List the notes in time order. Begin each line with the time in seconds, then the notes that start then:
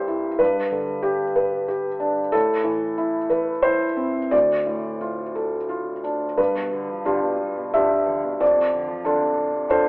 Already playing: C2 G2 G4 C5 D5 E5
0.08 E4
0.39 G2 B4
0.72 D3
1.03 G4
1.36 B4
1.68 G4
2.00 D4
2.32 A2 A4
2.64 E3
2.98 E4
3.30 B4
3.62 E4 C5
3.97 C4
4.31 D2 D5
4.66 A2
5.01 F4
5.35 A4
5.69 F4
6.04 D4
6.38 G2 B4
6.55 B2
6.72 D3
6.89 F3
7.05 D3 D4 F4 G4
7.23 B2
7.39 G2
7.57 B2
7.74 D3 D4 F4 G4 E5
7.91 F3
8.07 D3
8.24 B2
8.40 F2 A2 D5
8.55 C3
8.72 D3
8.88 F3
9.05 D3 D4 F4 A4
9.21 C3
9.37 A2
9.53 C3
9.69 D3 D4 F4 A4 C5